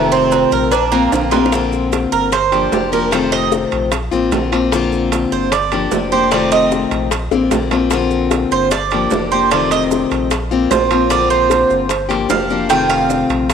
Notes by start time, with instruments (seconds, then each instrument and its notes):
Already playing: sub bass F1, steel-string acoustic guitar C3 D#3 A3 C4 F4, cuban tres A3
0.12 cuban tres C4, maracas
0.32 cowbell, low timbale, low agogo, maracas
0.52 sub bass A#1, cuban tres A#4, maracas
0.72 cuban tres D4, muted steel-string acoustic guitar stroke, cowbell, low agogo, maracas
0.92 cuban tres A#3, steel-string acoustic guitar A#3 C4 F4, low agogo, maracas
1.12 sub bass A#1, steel-string acoustic guitar D3 A#3 C4 F4, cowbell, high timbale, maracas
1.31 steel-string acoustic guitar A#3 C4 F4, cuban tres F4, cowbell, high bongo, low timbale, low agogo, maracas
1.46 low bongo
1.52 steel-string acoustic guitar D3 A#3 C4 F4, high bongo, high timbale, maracas
1.72 high bongo, maracas
1.92 high bongo, high timbale, low timbale, maracas
2.12 sub bass G1, cuban tres A#4, high bongo, maracas
2.32 cuban tres C5, muted steel-string acoustic guitar stroke, high bongo, high timbale, maracas
2.52 steel-string acoustic guitar F3 A#3 D4 G4, high bongo, high timbale, maracas
2.72 sub bass F1, steel-string acoustic guitar F3 A#3 D4 G4, high bongo, low bongo, low timbale, maracas
2.92 steel-string acoustic guitar F3 A#3 D4 G4, cuban tres A#4, maracas
3.11 steel-string acoustic guitar C3 D#3 A3 C4 F4, cuban tres C5, high bongo, high timbale, maracas
3.32 cuban tres D#5, high bongo, high timbale, maracas
3.52 high bongo, low timbale, maracas
3.72 sub bass A#1, high bongo, high timbale, maracas
3.92 muted steel-string acoustic guitar stroke, high bongo, high timbale, maracas
4.11 sub bass A1, steel-string acoustic guitar A#3 C4 F4, high bongo, maracas
4.31 sub bass A#1, steel-string acoustic guitar D3 A#3 C4 F4, high bongo, low bongo, high timbale, low timbale, maracas
4.52 steel-string acoustic guitar A#3 C4 F4, high timbale, maracas
4.71 steel-string acoustic guitar D3 A#3 C4 F4, high bongo, high timbale, maracas
4.92 high bongo, maracas
5.12 high bongo, high timbale, low timbale, maracas
5.32 sub bass G1, cuban tres C5, high bongo, maracas
5.52 cuban tres D5, muted steel-string acoustic guitar stroke, high bongo, high timbale, maracas
5.72 steel-string acoustic guitar F3 A#3 D4 G4, high bongo, high timbale, maracas
5.91 sub bass F1, steel-string acoustic guitar F3 A#3 D4 G4, high bongo, low bongo, low timbale, maracas
6.12 steel-string acoustic guitar F3 A#3 D4 G4, cuban tres C5, maracas
6.31 steel-string acoustic guitar C3 D#3 A3 C4 F4, cuban tres D5, high bongo, high timbale, maracas
6.51 cuban tres D#5, high bongo, high timbale, maracas
6.71 high bongo, low timbale, maracas
6.91 sub bass A#1, high bongo, high timbale, maracas
7.11 muted steel-string acoustic guitar stroke, high bongo, high timbale, maracas
7.31 sub bass A1, steel-string acoustic guitar A#3 C4 F4, high bongo, maracas
7.51 sub bass A#1, steel-string acoustic guitar D3 A#3 C4 F4, high bongo, high timbale, low timbale, maracas
7.71 steel-string acoustic guitar A#3 C4 F4, low bongo, high timbale, maracas
7.90 steel-string acoustic guitar D3 A#3 C4 F4, high bongo, high timbale, maracas
8.11 high bongo, maracas
8.31 high bongo, high timbale, low timbale, maracas
8.51 sub bass G1, cuban tres C5, high bongo, maracas
8.71 cuban tres D5, muted steel-string acoustic guitar stroke, high bongo, high timbale, maracas
8.91 steel-string acoustic guitar F3 A#3 D4 G4, high bongo, high timbale, maracas
9.10 sub bass F1, steel-string acoustic guitar F3 A#3 D4 G4, high bongo, low bongo, low timbale, maracas
9.31 steel-string acoustic guitar F3 A#3 D4 G4, cuban tres C5, maracas
9.51 steel-string acoustic guitar C3 D#3 A3 C4 F4, cuban tres D5, high bongo, high timbale, maracas
9.71 cuban tres D#5, high bongo, high timbale, maracas
9.91 high bongo, low timbale, maracas
10.11 sub bass A#1, high bongo, high timbale, maracas
10.31 muted steel-string acoustic guitar stroke, high bongo, high timbale, maracas
10.51 steel-string acoustic guitar A#3 C4 F4, high bongo, maracas
10.70 sub bass A#1, steel-string acoustic guitar D3 A#3 C4 F4, cuban tres C5, high bongo, low bongo, high timbale, low timbale, maracas
10.91 steel-string acoustic guitar A#3 C4 F4, high timbale, maracas
11.10 steel-string acoustic guitar D3 A#3 C4 F4, cuban tres D5, high bongo, high timbale, maracas
11.30 cuban tres C5, high bongo, maracas
11.50 high bongo, high timbale, low timbale, maracas
11.70 sub bass G1, high bongo, maracas
11.89 muted steel-string acoustic guitar stroke, high bongo, high timbale, maracas
12.09 steel-string acoustic guitar F3 A#3 D4 G4, high bongo, high timbale, maracas
12.29 sub bass F1, steel-string acoustic guitar F3 A#3 D4 G4, cuban tres F5, high bongo, low bongo, low timbale, maracas
12.50 steel-string acoustic guitar F3 A#3 D4 G4, maracas
12.69 steel-string acoustic guitar C3 D#3 A3 C4 F4, cuban tres G5, high bongo, high timbale, maracas
12.90 cuban tres F5, high bongo, high timbale, maracas
13.10 high bongo, low timbale, maracas
13.29 sub bass A#1, high bongo, high timbale, maracas
13.49 muted steel-string acoustic guitar stroke, high bongo, high timbale, maracas